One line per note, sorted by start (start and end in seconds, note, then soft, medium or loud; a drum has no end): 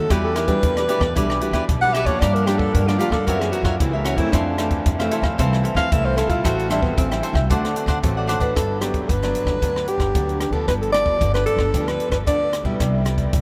0.00 0.13 A4 loud
0.10 0.55 E2 medium
0.10 0.61 E3 medium
0.10 0.35 G3 medium
0.10 0.35 D4 medium
0.10 0.34 E4 medium
0.10 0.35 F#4 medium
0.10 0.35 G4 medium
0.10 0.26 G4 medium
0.10 0.35 B4 medium
0.10 0.36 D5 medium
0.10 kick medium
0.10 cross-stick medium
0.10 closed hi-hat medium
0.25 0.37 A4 medium
0.35 0.75 E4 medium
0.35 0.75 G4 medium
0.35 0.49 A#4 medium
0.35 0.75 B4 medium
0.35 0.76 D5 medium
0.35 cross-stick medium
0.35 closed hi-hat medium
0.48 0.84 G3 medium
0.48 0.84 D4 medium
0.48 0.85 F#4 medium
0.48 1.28 B4 loud
0.48 kick medium
0.48 closed hi-hat soft
0.63 0.85 E2 medium
0.63 1.13 B2 medium
0.63 kick medium
0.63 closed hi-hat medium
0.77 0.87 G4 soft
0.77 0.88 B4 soft
0.77 0.89 D5 soft
0.77 cross-stick medium
0.77 closed hi-hat soft
0.88 1.05 G3 medium
0.88 1.05 D4 medium
0.88 1.01 E4 medium
0.88 1.05 F#4 medium
0.88 1.01 G4 medium
0.88 1.00 B4 medium
0.88 0.99 D5 medium
0.88 closed hi-hat medium
0.99 1.12 E2 medium
0.99 1.14 G4 soft
0.99 1.14 B4 soft
0.99 1.13 D5 medium
0.99 kick medium
0.99 cross-stick medium
1.15 1.38 B1 medium
1.15 1.66 E3 medium
1.15 1.38 G3 medium
1.15 1.39 D4 medium
1.15 1.40 E4 medium
1.15 1.39 F#4 medium
1.15 1.40 G4 medium
1.15 1.41 B4 medium
1.15 1.41 D5 medium
1.15 kick medium
1.15 closed hi-hat medium
1.30 cross-stick medium
1.41 1.77 G3 medium
1.41 1.78 D4 medium
1.41 1.52 E4 soft
1.41 1.78 F#4 medium
1.41 1.52 G4 soft
1.41 1.53 B4 soft
1.41 1.53 D5 medium
1.41 closed hi-hat medium
1.51 1.64 E2 medium
1.51 1.63 E4 medium
1.51 1.63 G4 medium
1.51 1.64 B4 medium
1.51 1.64 D5 medium
1.51 kick medium
1.51 cross-stick medium
1.51 closed hi-hat soft
1.69 2.02 B1 medium
1.69 2.19 B2 medium
1.69 kick medium
1.69 closed hi-hat medium
1.82 2.04 G3 medium
1.82 2.05 D4 medium
1.82 2.05 F#4 medium
1.82 1.94 G4 soft
1.82 1.95 B4 soft
1.82 1.94 D5 soft
1.82 1.95 F#5 loud
1.93 2.07 E4 medium
1.93 2.07 G4 medium
1.93 2.06 B4 medium
1.93 2.05 D5 medium
1.93 2.08 E5 loud
1.93 cross-stick medium
1.93 closed hi-hat medium
2.04 2.17 F#2 medium
2.04 2.46 F3 medium
2.04 2.47 A#3 medium
2.04 2.47 D4 medium
2.04 2.20 G4 soft
2.04 2.20 B4 soft
2.04 2.22 C#5 loud
2.04 2.19 D5 soft
2.04 kick medium
2.04 closed hi-hat soft
2.20 2.66 G2 loud
2.20 2.72 G2 medium
2.20 2.45 G4 medium
2.20 2.46 A#4 medium
2.20 2.36 D5 medium
2.20 2.47 D5 medium
2.20 2.47 F5 medium
2.20 kick medium
2.20 cross-stick medium
2.20 closed hi-hat medium
2.34 2.48 A#4 medium
2.34 closed hi-hat soft
2.46 2.83 F3 medium
2.46 2.83 A#3 medium
2.46 2.83 D4 medium
2.46 2.59 G4 medium
2.46 2.86 G4 medium
2.46 2.86 A#4 medium
2.46 2.86 D5 medium
2.46 2.87 F5 medium
2.46 cross-stick medium
2.46 closed hi-hat medium
2.58 2.75 A4 medium
2.58 kick medium
2.74 2.97 G2 medium
2.74 3.25 D3 medium
2.74 2.89 A#4 medium
2.74 kick medium
2.74 closed hi-hat medium
2.88 2.97 F3 medium
2.88 2.97 A#3 medium
2.88 3.00 D4 medium
2.88 2.97 D4 medium
2.88 2.99 A#4 soft
2.88 2.99 D5 medium
2.88 2.99 F5 soft
2.88 cross-stick medium
2.88 closed hi-hat soft
2.99 3.16 F3 medium
2.99 3.16 A#3 medium
2.99 3.16 D4 medium
2.99 3.13 F4 medium
2.99 3.12 G4 medium
2.99 3.12 A#4 medium
2.99 3.11 D5 medium
2.99 3.10 F5 medium
2.99 closed hi-hat soft
3.10 3.23 G2 medium
3.10 3.28 A4 medium
3.10 3.26 A#4 soft
3.10 3.25 D5 medium
3.10 3.25 F5 medium
3.10 kick medium
3.10 cross-stick medium
3.27 3.77 F#2 medium
3.27 3.50 F#2 medium
3.27 3.61 E3 medium
3.27 3.61 A#3 medium
3.27 3.62 C4 medium
3.27 3.51 F#4 medium
3.27 3.42 A#4 loud
3.27 3.51 A#4 medium
3.27 3.52 C#5 medium
3.27 3.53 E5 medium
3.27 kick medium
3.27 closed hi-hat medium
3.40 3.53 G#4 medium
3.40 cross-stick medium
3.40 closed hi-hat soft
3.51 3.66 F#4 loud
3.51 3.63 F#4 medium
3.51 3.64 A#4 soft
3.51 3.64 C#5 soft
3.51 3.64 E5 medium
3.51 closed hi-hat soft
3.63 3.76 F#2 medium
3.63 3.81 F4 medium
3.63 3.74 F#4 medium
3.63 3.75 A#4 medium
3.63 3.75 C#5 medium
3.63 3.75 E5 medium
3.63 kick medium
3.63 cross-stick medium
3.63 closed hi-hat soft
3.80 4.14 C#2 medium
3.80 4.30 C#3 medium
3.80 4.16 E3 medium
3.80 4.16 A#3 medium
3.80 4.16 C4 medium
3.80 3.95 E4 medium
3.80 kick medium
3.80 closed hi-hat medium
3.93 4.06 G#3 medium
3.93 4.04 A#4 soft
3.93 4.05 C#5 soft
3.93 4.05 E5 medium
4.04 4.19 C#4 medium
4.04 4.18 F#4 medium
4.04 4.17 A#4 medium
4.04 4.17 C#5 medium
4.04 4.16 E5 medium
4.04 cross-stick medium
4.04 closed hi-hat medium
4.16 4.29 F#2 medium
4.16 4.54 E3 medium
4.16 4.54 A3 medium
4.16 4.54 C4 medium
4.16 4.34 E4 medium
4.16 4.31 A#4 soft
4.16 4.31 C#5 soft
4.16 4.30 E5 soft
4.16 kick medium
4.16 closed hi-hat soft
4.32 4.78 F2 loud
4.32 4.83 F2 medium
4.32 5.12 D4 medium
4.32 4.58 E4 medium
4.32 4.57 A4 medium
4.32 4.58 C5 medium
4.32 4.58 F5 medium
4.32 kick medium
4.32 cross-stick medium
4.32 closed hi-hat medium
4.58 4.84 E3 medium
4.58 4.84 A3 medium
4.58 4.84 C4 medium
4.58 4.97 A4 medium
4.58 4.98 C5 medium
4.58 4.98 F5 medium
4.58 cross-stick medium
4.58 closed hi-hat medium
4.71 kick medium
4.71 closed hi-hat soft
4.86 5.08 F2 loud
4.86 5.36 C3 medium
4.86 kick medium
4.86 closed hi-hat medium
4.99 5.35 E3 medium
4.99 5.35 A3 medium
4.99 5.35 C4 medium
4.99 5.11 A4 soft
4.99 5.11 C5 soft
4.99 5.11 F5 medium
4.99 cross-stick medium
4.99 closed hi-hat soft
5.11 5.24 E4 medium
5.11 5.24 A4 medium
5.11 5.23 C5 medium
5.11 5.22 F5 medium
5.11 closed hi-hat medium
5.22 5.34 F2 medium
5.22 5.37 A4 soft
5.22 5.37 C5 medium
5.22 5.36 F5 medium
5.22 kick medium
5.22 cross-stick medium
5.38 5.61 C2 loud
5.38 5.89 F2 medium
5.38 5.87 E3 medium
5.38 5.88 A3 medium
5.38 5.88 C4 medium
5.38 5.62 E4 medium
5.38 5.63 A4 medium
5.38 5.63 C5 medium
5.38 5.64 F5 medium
5.38 kick medium
5.38 closed hi-hat medium
5.53 cross-stick medium
5.63 5.75 E4 soft
5.63 5.76 A4 soft
5.63 5.76 C5 soft
5.63 5.76 F5 soft
5.63 closed hi-hat soft
5.75 5.87 F2 medium
5.75 5.86 E4 medium
5.75 5.86 A4 medium
5.75 5.87 C5 medium
5.75 5.93 F5 loud
5.75 5.87 F5 medium
5.75 kick medium
5.75 cross-stick medium
5.75 closed hi-hat soft
5.92 6.25 C2 loud
5.92 6.42 C3 medium
5.92 6.27 E3 medium
5.92 6.27 A3 medium
5.92 6.27 C4 medium
5.92 6.07 E5 medium
5.92 kick loud
5.92 closed hi-hat medium
6.05 6.16 A4 soft
6.05 6.18 C5 medium
6.05 6.17 C5 soft
6.05 6.17 F5 medium
6.17 6.29 E4 medium
6.17 6.31 A4 loud
6.17 6.30 A4 medium
6.17 6.29 C5 medium
6.17 6.28 F5 medium
6.17 cross-stick medium
6.17 closed hi-hat medium
6.27 6.40 B1 medium
6.27 6.66 G3 medium
6.27 6.66 C4 medium
6.27 6.66 E4 medium
6.27 6.46 F4 medium
6.27 6.43 A4 soft
6.27 6.43 C5 soft
6.27 6.42 F5 medium
6.27 kick medium
6.27 closed hi-hat soft
6.44 6.89 A1 loud
6.44 6.95 A2 medium
6.44 6.71 F#4 medium
6.44 6.69 A4 medium
6.44 6.69 C5 medium
6.44 6.70 E5 medium
6.44 6.70 G5 medium
6.44 kick medium
6.44 cross-stick medium
6.44 closed hi-hat medium
6.59 closed hi-hat soft
6.70 7.06 G3 medium
6.70 7.06 C4 medium
6.70 6.84 D4 medium
6.70 7.06 E4 medium
6.70 7.09 A4 medium
6.70 7.09 C5 medium
6.70 7.10 E5 medium
6.70 7.10 G5 medium
6.70 cross-stick medium
6.70 closed hi-hat medium
6.82 6.96 B3 medium
6.82 kick medium
6.97 7.20 A1 loud
6.97 7.48 E3 medium
6.97 7.13 C4 medium
6.97 kick medium
6.97 closed hi-hat medium
7.11 7.46 G3 medium
7.11 7.47 C4 medium
7.11 7.47 E4 medium
7.11 7.22 C5 soft
7.11 7.23 E5 soft
7.11 7.23 G5 soft
7.11 cross-stick medium
7.11 closed hi-hat soft
7.23 7.35 A4 medium
7.23 7.35 C5 medium
7.23 7.34 E5 medium
7.23 7.33 G5 medium
7.23 closed hi-hat soft
7.33 7.46 C2 loud
7.33 7.49 C5 soft
7.33 7.48 E5 medium
7.33 7.48 G5 medium
7.33 kick medium
7.33 cross-stick medium
7.50 7.73 D2 loud
7.50 8.00 D3 medium
7.50 7.84 A3 medium
7.50 7.84 C4 medium
7.50 7.74 D4 medium
7.50 7.85 F#4 medium
7.50 7.75 C5 medium
7.50 7.75 D5 medium
7.50 7.76 F#5 medium
7.50 kick medium
7.50 closed hi-hat medium
7.65 cross-stick medium
7.65 closed hi-hat soft
7.75 7.86 D4 soft
7.75 7.87 C5 soft
7.75 7.87 D5 medium
7.75 7.87 F#5 medium
7.75 closed hi-hat medium
7.86 7.99 D2 loud
7.86 7.97 D4 medium
7.86 7.98 C5 medium
7.86 7.98 D5 medium
7.86 7.98 F#5 medium
7.86 kick medium
7.86 cross-stick medium
7.86 closed hi-hat soft
8.03 8.37 A1 loud
8.03 8.53 A2 medium
8.03 8.38 A3 medium
8.03 8.39 C4 medium
8.03 8.39 F#4 medium
8.03 kick medium
8.03 closed hi-hat medium
8.17 8.27 C5 soft
8.17 8.27 D5 soft
8.17 8.28 F#5 medium
8.27 8.41 D4 medium
8.27 8.40 C5 medium
8.27 8.40 D5 medium
8.27 8.39 F#5 medium
8.27 cross-stick medium
8.27 closed hi-hat medium
8.39 8.52 A1 medium
8.39 8.77 D4 medium
8.39 8.77 F#4 medium
8.39 8.77 B4 medium
8.39 8.54 C5 soft
8.39 8.54 D5 soft
8.39 8.53 F#5 medium
8.39 kick medium
8.39 closed hi-hat soft
8.56 9.01 G1 medium
8.56 9.06 G2 medium
8.56 8.81 A4 medium
8.56 kick medium
8.56 cross-stick medium
8.56 closed hi-hat medium
8.81 9.07 F#3 medium
8.81 9.07 B3 medium
8.81 9.07 D4 medium
8.81 9.11 G4 medium
8.81 cross-stick medium
8.81 closed hi-hat medium
8.94 kick medium
8.94 closed hi-hat soft
9.09 9.32 G1 medium
9.09 9.59 D3 soft
9.09 9.88 B4 medium
9.09 kick medium
9.09 closed hi-hat medium
9.23 9.58 F#3 medium
9.23 9.58 B3 medium
9.23 9.58 D4 medium
9.23 cross-stick medium
9.23 closed hi-hat soft
9.35 closed hi-hat medium
9.45 9.58 G1 medium
9.45 kick medium
9.45 cross-stick medium
9.62 9.84 D2 medium
9.62 10.12 G2 medium
9.62 10.11 F#3 medium
9.62 10.11 B3 soft
9.62 10.11 D4 medium
9.62 kick medium
9.62 closed hi-hat medium
9.76 cross-stick medium
9.88 10.38 G4 medium
9.88 closed hi-hat soft
9.98 10.11 G1 medium
9.98 kick medium
9.98 cross-stick medium
9.98 closed hi-hat soft
10.15 10.49 D2 medium
10.15 10.65 D3 medium
10.15 10.50 F#3 soft
10.15 10.51 B3 soft
10.15 10.51 D4 medium
10.15 kick medium
10.15 closed hi-hat medium
10.29 closed hi-hat soft
10.40 10.54 G4 medium
10.40 cross-stick medium
10.40 closed hi-hat soft
10.50 10.63 D2 medium
10.50 10.89 F3 medium
10.50 10.89 B3 medium
10.50 10.89 D4 medium
10.50 10.67 A4 medium
10.50 kick medium
10.68 11.13 G1 medium
10.68 11.18 G2 medium
10.68 10.74 B4 medium
10.68 kick medium
10.68 cross-stick medium
10.68 closed hi-hat medium
10.82 10.92 A4 medium
10.82 closed hi-hat soft
10.93 11.30 F3 medium
10.93 11.30 B3 medium
10.93 11.30 D4 medium
10.93 11.30 D5 loud
10.93 cross-stick medium
10.93 closed hi-hat medium
11.06 kick medium
11.21 11.43 G1 loud
11.21 11.71 D3 medium
11.21 kick medium
11.21 closed hi-hat medium
11.34 11.70 F3 medium
11.34 11.70 B3 medium
11.34 11.71 D4 medium
11.34 11.45 B4 medium
11.34 cross-stick medium
11.34 closed hi-hat soft
11.46 11.89 A4 loud
11.46 closed hi-hat soft
11.56 11.69 G1 medium
11.56 kick medium
11.56 cross-stick medium
11.74 11.96 D2 medium
11.74 12.24 G2 medium
11.74 12.23 F3 medium
11.74 12.23 B3 medium
11.74 12.23 D4 medium
11.74 kick medium
11.74 closed hi-hat medium
11.88 12.11 B4 medium
11.88 cross-stick medium
11.88 closed hi-hat soft
12.00 closed hi-hat soft
12.10 12.23 G1 medium
12.10 12.18 B4 medium
12.10 kick medium
12.10 cross-stick medium
12.10 closed hi-hat soft
12.27 12.61 D2 medium
12.27 12.77 D3 medium
12.27 12.52 F3 medium
12.27 12.52 B3 medium
12.27 12.52 D4 medium
12.27 12.64 D5 medium
12.27 kick medium
12.27 closed hi-hat medium
12.53 cross-stick medium
12.53 closed hi-hat medium
12.63 12.76 B1 medium
12.63 13.01 G3 medium
12.63 13.01 B3 medium
12.63 13.02 E4 medium
12.63 kick medium
12.80 13.25 C2 medium
12.80 13.30 C3 medium
12.80 kick medium
12.80 cross-stick medium
12.80 closed hi-hat medium
13.05 13.31 G3 medium
13.05 13.31 B3 medium
13.05 13.31 E4 medium
13.05 cross-stick medium
13.05 closed hi-hat medium
13.18 kick medium
13.18 closed hi-hat soft
13.33 13.41 C2 loud
13.33 13.41 G2 medium
13.33 kick medium
13.33 closed hi-hat medium